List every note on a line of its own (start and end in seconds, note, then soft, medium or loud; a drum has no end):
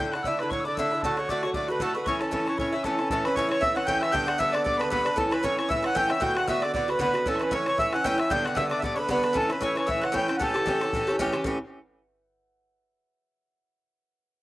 0.00 0.13 A2 medium
0.00 0.13 D3 medium
0.00 0.13 D4 medium
0.00 0.12 E4 medium
0.00 0.13 G6 medium
0.10 0.25 E4 soft
0.10 0.13 G5 medium
0.10 0.24 F#6 medium
0.10 bodhran medium
0.15 0.25 D3 soft
0.15 0.25 D4 soft
0.15 0.26 F#5 medium
0.23 0.40 A2 medium
0.23 0.40 D3 medium
0.23 0.40 D4 medium
0.23 0.41 E5 loud
0.23 0.41 E6 medium
0.23 bodhran medium
0.27 0.38 E4 medium
0.39 0.50 D3 soft
0.39 0.51 D4 soft
0.39 0.51 E4 soft
0.39 0.50 B4 medium
0.39 0.51 B5 medium
0.39 bodhran medium
0.50 0.65 A2 medium
0.50 0.66 D3 medium
0.50 0.65 D4 medium
0.50 0.64 E4 medium
0.50 0.65 C#5 loud
0.50 0.62 C#6 medium
0.50 bodhran medium
0.60 0.66 E6 soft
0.64 0.77 D3 soft
0.64 0.77 D4 soft
0.64 0.77 E4 medium
0.64 0.77 D5 medium
0.64 0.77 D6 medium
0.75 0.91 A2 medium
0.75 0.92 D3 medium
0.75 1.02 E5 medium
0.75 1.03 E6 medium
0.75 bodhran medium
0.79 0.92 D4 medium
0.79 0.90 E4 loud
0.91 1.03 D3 soft
0.91 1.04 D4 soft
0.91 1.03 E4 soft
1.02 1.18 A2 medium
1.02 1.18 D3 medium
1.02 1.18 A3 medium
1.02 1.16 F#4 medium
1.02 1.18 A4 medium
1.02 1.17 A5 medium
1.02 bodhran medium
1.17 1.29 D3 soft
1.17 1.29 A3 soft
1.17 1.28 F#4 medium
1.17 1.29 C#5 medium
1.17 bodhran medium
1.28 1.43 A2 medium
1.28 1.44 D3 medium
1.28 1.44 A3 medium
1.28 1.42 F#4 medium
1.28 1.44 D5 loud
1.28 1.41 D6 medium
1.28 bodhran medium
1.41 1.54 A3 soft
1.41 1.55 F#4 soft
1.41 1.50 C#5 medium
1.41 1.55 C#6 medium
1.41 bodhran medium
1.46 1.53 D3 soft
1.54 1.69 A2 medium
1.54 1.69 D3 medium
1.54 1.69 A3 medium
1.54 1.67 F#4 medium
1.54 1.68 D5 medium
1.54 1.70 D6 medium
1.54 bodhran medium
1.68 1.80 D3 soft
1.68 1.81 A3 medium
1.68 1.80 F#4 medium
1.68 1.82 B4 medium
1.68 1.80 B5 medium
1.80 1.95 A2 medium
1.80 1.95 D3 medium
1.80 1.95 A3 medium
1.80 1.93 F#4 medium
1.80 1.96 A4 medium
1.80 1.95 A5 medium
1.80 bodhran medium
1.94 2.07 D3 soft
1.94 2.07 A3 soft
1.94 2.06 F#4 soft
1.94 2.06 B4 medium
1.94 2.06 B5 medium
2.05 2.21 A2 medium
2.05 2.21 E3 medium
2.05 2.21 C#4 medium
2.05 2.19 E4 medium
2.05 2.22 C#5 loud
2.05 2.21 C#6 medium
2.05 bodhran medium
2.20 2.31 E3 soft
2.20 2.31 C#4 soft
2.20 2.32 E4 medium
2.20 2.32 A4 medium
2.20 2.31 A5 medium
2.20 bodhran medium
2.31 2.46 A2 medium
2.31 2.47 E3 medium
2.31 2.47 C#4 medium
2.31 2.45 E4 medium
2.31 2.46 A4 medium
2.31 2.59 A5 medium
2.31 bodhran medium
2.46 2.58 E3 soft
2.46 2.58 C#4 soft
2.46 2.58 E4 medium
2.46 2.58 C#5 medium
2.46 bodhran medium
2.58 2.72 A2 medium
2.58 2.73 E3 medium
2.58 2.73 C#4 medium
2.58 2.71 E4 medium
2.58 2.74 C#5 medium
2.58 2.71 C#6 medium
2.58 bodhran medium
2.72 2.84 E3 soft
2.72 2.85 C#4 soft
2.72 2.84 E4 medium
2.72 2.84 E5 medium
2.72 2.86 E6 medium
2.84 2.99 A2 medium
2.84 2.99 E3 medium
2.84 2.99 C#4 medium
2.84 2.97 E4 medium
2.84 3.09 A4 medium
2.84 3.09 A5 medium
2.84 bodhran medium
2.98 3.11 E3 soft
2.98 3.11 C#4 soft
2.98 3.10 E4 soft
2.98 bodhran medium
3.10 3.25 A2 medium
3.10 3.25 E3 medium
3.10 3.26 C#4 medium
3.10 3.24 E4 medium
3.10 3.24 A4 medium
3.10 5.18 A4 medium
3.10 3.26 A5 medium
3.10 bodhran medium
3.24 3.36 E3 soft
3.24 3.36 C#4 medium
3.24 3.36 E4 medium
3.24 3.35 B4 medium
3.24 4.80 B4 medium
3.24 3.35 B5 medium
3.24 bodhran medium
3.35 3.50 A2 medium
3.35 3.51 E3 medium
3.35 3.50 C#4 medium
3.35 3.47 E4 loud
3.35 3.49 C#5 loud
3.35 3.51 C#5 medium
3.35 3.49 C#6 medium
3.35 bodhran medium
3.49 3.60 E3 soft
3.49 3.61 C#4 soft
3.49 3.61 E4 medium
3.49 3.62 C#5 medium
3.49 4.59 C#5 medium
3.49 3.61 C#6 medium
3.49 bodhran medium
3.61 3.76 A2 medium
3.61 3.76 E3 medium
3.61 3.75 C#4 medium
3.61 3.74 E4 medium
3.61 3.75 E5 loud
3.61 4.01 E5 medium
3.61 3.78 E6 medium
3.61 bodhran medium
3.75 3.87 E3 soft
3.75 3.87 C#4 medium
3.75 3.87 E4 medium
3.75 3.87 F#5 medium
3.75 3.93 F#5 medium
3.75 3.87 F#6 medium
3.75 bodhran medium
3.86 4.02 A2 medium
3.86 4.02 E3 loud
3.86 4.02 C#4 medium
3.86 3.99 E4 medium
3.86 4.02 G5 loud
3.86 4.14 G5 medium
3.86 4.03 G6 medium
3.86 bodhran medium
3.95 bodhran soft
4.01 4.13 E3 soft
4.01 4.13 C#4 soft
4.01 4.13 E4 medium
4.01 4.40 E5 medium
4.01 4.14 E5 medium
4.01 4.13 E6 loud
4.01 bodhran medium
4.12 4.27 G2 medium
4.12 4.28 D3 medium
4.12 4.26 B3 medium
4.12 4.25 D4 medium
4.12 4.28 G5 loud
4.12 4.34 G5 medium
4.12 4.41 G6 loud
4.12 bodhran medium
4.26 4.38 D3 soft
4.26 4.39 B3 medium
4.26 4.39 D4 medium
4.26 4.38 F#5 medium
4.26 5.83 F#5 medium
4.26 bodhran medium
4.38 4.53 G2 medium
4.38 4.54 D3 medium
4.38 4.54 B3 medium
4.38 4.52 D4 medium
4.38 4.54 E5 loud
4.38 5.70 E5 loud
4.38 4.54 E6 medium
4.38 bodhran medium
4.52 4.64 D3 soft
4.52 4.65 B3 medium
4.52 4.65 D4 medium
4.52 4.63 D5 medium
4.52 4.65 D5 medium
4.52 4.64 D6 medium
4.52 bodhran medium
4.64 4.79 G2 medium
4.64 4.80 D3 medium
4.64 4.79 B3 medium
4.64 4.78 D4 medium
4.64 4.80 D5 medium
4.64 5.50 D5 medium
4.64 4.79 D6 medium
4.64 bodhran medium
4.77 4.91 B3 medium
4.77 4.91 D4 medium
4.77 4.89 B4 medium
4.77 4.91 B4 medium
4.77 4.90 B5 medium
4.77 bodhran medium
4.82 4.90 D3 medium
4.90 5.05 G2 medium
4.90 5.06 D3 medium
4.90 5.05 B3 medium
4.90 5.04 D4 medium
4.90 5.18 B4 medium
4.90 5.06 B4 medium
4.90 5.15 B5 medium
4.90 bodhran loud
4.98 bodhran soft
5.05 5.16 D3 soft
5.05 5.17 B3 medium
5.05 5.17 D4 medium
5.05 5.32 B4 medium
5.05 bodhran medium
5.16 5.31 A2 medium
5.16 5.32 E3 medium
5.16 5.32 C#4 medium
5.16 5.30 E4 medium
5.16 5.32 A4 loud
5.16 7.27 A4 medium
5.16 5.32 A5 medium
5.16 bodhran loud
5.31 5.42 E3 medium
5.31 5.43 C#4 soft
5.31 5.43 E4 medium
5.31 5.44 B4 medium
5.31 6.87 B4 medium
5.31 5.42 B5 medium
5.31 bodhran medium
5.43 5.58 A2 medium
5.43 5.58 E3 medium
5.43 5.58 C#4 medium
5.43 5.56 E4 medium
5.43 5.57 C#5 loud
5.43 5.59 C#5 medium
5.43 5.56 C#6 medium
5.43 bodhran loud
5.57 5.69 E3 soft
5.57 5.69 C#4 soft
5.57 5.69 E4 soft
5.57 5.70 C#5 medium
5.57 5.70 C#6 medium
5.57 bodhran medium
5.69 5.84 A2 medium
5.69 5.84 E3 medium
5.69 5.83 C#4 medium
5.69 5.81 E4 medium
5.69 5.85 E5 loud
5.69 6.10 E5 loud
5.69 5.83 E6 medium
5.69 bodhran loud
5.82 5.94 E3 soft
5.82 5.95 C#4 medium
5.82 5.95 E4 medium
5.82 6.01 F#5 medium
5.82 5.96 F#5 medium
5.82 5.97 F#6 medium
5.82 bodhran medium
5.95 6.10 A2 medium
5.95 6.10 E3 loud
5.95 6.09 C#4 loud
5.95 6.07 E4 medium
5.95 6.22 G5 loud
5.95 6.11 G5 loud
5.95 6.12 G6 loud
5.95 bodhran loud
6.03 bodhran soft
6.08 6.20 E3 soft
6.08 6.21 C#4 soft
6.08 6.21 E4 medium
6.08 6.47 E5 medium
6.08 6.22 E5 medium
6.08 6.23 E6 medium
6.08 bodhran medium
6.20 6.35 A2 medium
6.20 6.36 D3 medium
6.20 6.35 B3 medium
6.20 6.34 F#4 medium
6.20 6.37 G5 loud
6.20 6.43 G5 medium
6.20 6.36 G6 loud
6.20 bodhran medium
6.35 6.47 D3 soft
6.35 6.48 B3 medium
6.35 6.47 F#4 medium
6.35 6.47 F#5 medium
6.35 7.92 F#5 medium
6.35 6.49 F#6 medium
6.35 bodhran medium
6.47 6.62 A2 medium
6.47 6.63 D3 medium
6.47 6.62 B3 medium
6.47 6.61 F#4 medium
6.47 7.78 E5 medium
6.47 6.63 E5 loud
6.47 6.64 E6 medium
6.47 bodhran medium
6.62 6.74 D3 soft
6.62 6.75 B3 medium
6.62 6.74 F#4 medium
6.62 6.72 D5 medium
6.62 6.73 D5 medium
6.62 6.74 D6 medium
6.62 bodhran medium
6.73 6.88 A2 medium
6.73 6.89 D3 medium
6.73 6.89 B3 medium
6.73 6.87 F#4 medium
6.73 6.89 D5 loud
6.73 7.60 D5 medium
6.73 6.91 D6 medium
6.73 bodhran medium
6.87 6.98 D3 soft
6.87 6.99 B3 soft
6.87 7.00 F#4 medium
6.87 7.00 B4 medium
6.87 7.00 B5 medium
6.87 bodhran medium
6.99 7.14 A2 medium
6.99 7.14 D3 medium
6.99 7.14 B3 medium
6.99 7.13 F#4 medium
6.99 7.42 B4 medium
6.99 7.28 B4 loud
6.99 7.25 B5 medium
6.99 bodhran medium
7.07 bodhran soft
7.14 7.26 D3 soft
7.14 7.27 B3 soft
7.14 7.26 F#4 medium
7.14 bodhran medium
7.26 7.40 A2 medium
7.26 7.41 E3 medium
7.26 7.40 C#4 medium
7.26 7.38 E4 medium
7.26 9.36 A4 medium
7.26 7.42 A4 medium
7.26 7.37 A5 medium
7.26 bodhran medium
7.36 7.52 E4 medium
7.36 7.53 B5 medium
7.36 7.40 C#6 soft
7.41 7.51 E3 soft
7.41 7.51 C#4 medium
7.41 8.99 B4 medium
7.41 7.53 B4 medium
7.41 bodhran medium
7.51 7.66 A2 medium
7.51 7.67 E3 medium
7.51 7.67 C#4 medium
7.51 7.65 E4 medium
7.51 7.66 C#5 medium
7.51 7.66 C#5 loud
7.51 7.66 C#6 medium
7.51 bodhran medium
7.66 7.78 E3 soft
7.66 7.79 C#4 medium
7.66 7.78 E4 soft
7.66 8.89 C#5 medium
7.66 7.78 C#5 medium
7.66 7.77 C#6 medium
7.66 bodhran medium
7.78 7.93 A2 medium
7.78 7.93 E3 medium
7.78 7.93 C#4 medium
7.78 7.92 E4 medium
7.78 8.18 E5 medium
7.78 7.94 E5 loud
7.78 7.94 E6 medium
7.78 bodhran medium
7.93 8.04 E3 medium
7.93 8.05 C#4 medium
7.93 8.04 E4 soft
7.93 8.11 F#5 medium
7.93 8.05 F#5 medium
7.93 8.06 F#6 medium
7.93 bodhran medium
8.04 8.19 A2 loud
8.04 8.19 E3 medium
8.04 8.18 C#4 loud
8.04 8.16 E4 medium
8.04 8.19 G5 loud
8.04 8.29 G5 medium
8.04 8.20 G6 loud
8.04 bodhran medium
8.12 bodhran soft
8.18 8.31 E3 soft
8.18 8.31 C#4 soft
8.18 8.30 E4 medium
8.18 8.56 E5 medium
8.18 8.32 E5 loud
8.18 8.32 E6 loud
8.18 bodhran medium
8.29 8.45 G2 medium
8.29 8.46 D3 loud
8.29 8.45 B3 medium
8.29 8.43 D4 medium
8.29 8.50 G5 medium
8.29 8.46 G5 loud
8.29 8.46 G6 medium
8.29 bodhran medium
8.44 8.55 D3 medium
8.44 8.56 B3 soft
8.44 8.56 D4 medium
8.44 10.05 F#5 medium
8.44 8.58 F#5 medium
8.44 8.58 F#6 medium
8.44 bodhran medium
8.55 8.71 G2 medium
8.55 8.71 D3 medium
8.55 8.70 B3 medium
8.55 8.68 D4 medium
8.55 9.87 E5 medium
8.55 8.64 E5 loud
8.55 8.69 E6 medium
8.55 bodhran loud
8.69 8.82 D3 soft
8.69 8.83 B3 medium
8.69 8.82 D4 medium
8.69 8.80 D5 medium
8.69 8.81 D6 medium
8.69 bodhran medium
8.79 8.97 G2 medium
8.79 9.68 D5 medium
8.79 8.83 E5 medium
8.79 8.98 D6 medium
8.83 8.97 D3 medium
8.83 8.97 B3 medium
8.83 8.94 D4 medium
8.83 8.95 D5 medium
8.83 bodhran medium
8.94 9.09 B3 medium
8.94 9.08 D4 medium
8.94 8.98 C#5 medium
8.94 9.06 B5 medium
8.99 9.08 D3 soft
8.99 9.09 B4 medium
8.99 9.10 B4 medium
9.07 9.24 G2 medium
9.07 9.24 D3 medium
9.07 9.22 B3 loud
9.07 9.50 B4 medium
9.07 9.36 B5 medium
9.07 bodhran medium
9.11 9.22 D4 loud
9.11 9.37 B4 medium
9.17 bodhran soft
9.23 9.34 D3 medium
9.23 9.35 B3 medium
9.23 9.35 D4 medium
9.23 bodhran medium
9.33 9.49 A2 medium
9.33 9.49 E3 medium
9.33 9.49 C#4 medium
9.33 9.48 E4 medium
9.33 10.41 A4 medium
9.33 9.51 A4 loud
9.33 9.50 A5 medium
9.33 bodhran medium
9.49 9.60 E3 soft
9.49 9.61 C#4 medium
9.49 9.61 E4 medium
9.49 11.55 B4 medium
9.49 9.63 B4 medium
9.49 bodhran medium
9.61 9.76 A2 medium
9.61 9.76 E3 medium
9.61 9.76 C#4 medium
9.61 9.74 E4 medium
9.61 9.76 C#5 medium
9.61 9.75 C#6 medium
9.61 bodhran medium
9.75 9.86 E3 soft
9.75 9.87 C#4 soft
9.75 9.88 E4 medium
9.75 11.68 C#5 medium
9.75 9.89 C#5 medium
9.75 9.88 C#6 medium
9.75 bodhran medium
9.86 10.02 A2 medium
9.86 10.02 E3 medium
9.86 10.02 C#4 medium
9.86 10.00 E4 medium
9.86 11.60 E5 medium
9.86 10.04 E5 loud
9.86 10.03 E6 medium
9.86 bodhran medium
10.01 10.12 E3 soft
10.01 10.12 C#4 medium
10.01 10.13 E4 medium
10.01 10.14 F#5 medium
10.01 10.16 F#6 medium
10.01 bodhran medium
10.12 10.28 A2 loud
10.12 10.28 E3 medium
10.12 10.28 C#4 medium
10.12 10.27 E4 loud
10.12 10.39 G6 medium
10.12 bodhran medium
10.16 10.43 G5 medium
10.16 10.36 G5 loud
10.28 10.39 E3 soft
10.28 10.39 C#4 medium
10.28 10.40 E4 soft
10.28 bodhran medium
10.37 10.55 A2 medium
10.37 10.55 E3 medium
10.37 11.97 F#5 medium
10.37 10.42 F#5 medium
10.37 11.14 A5 medium
10.41 10.55 C#4 medium
10.41 10.53 G4 medium
10.41 11.16 A4 medium
10.41 11.16 A4 loud
10.41 bodhran medium
10.54 10.66 E3 medium
10.54 10.66 C#4 soft
10.54 10.66 G4 medium
10.54 bodhran medium
10.66 10.81 A2 medium
10.66 10.81 E3 medium
10.66 10.82 C#4 medium
10.66 10.80 G4 medium
10.66 bodhran medium
10.81 10.93 E3 soft
10.81 10.94 C#4 soft
10.81 10.93 G4 medium
10.81 bodhran medium
10.93 11.08 A2 medium
10.93 11.08 E3 medium
10.93 11.08 C#4 medium
10.93 11.06 G4 medium
10.93 bodhran medium
11.07 11.18 E3 medium
11.07 11.19 C#4 medium
11.07 11.19 G4 medium
11.07 bodhran medium
11.19 11.34 A2 loud
11.19 11.34 E3 medium
11.19 11.33 C#4 loud
11.19 11.31 G4 loud
11.19 bodhran loud
11.27 bodhran soft
11.32 11.45 E3 soft
11.32 11.45 C#4 medium
11.32 11.45 G4 medium
11.32 bodhran medium
11.44 11.56 A2 medium
11.44 11.57 E3 medium
11.44 11.57 C#4 medium
11.44 11.58 G4 medium
11.44 bodhran medium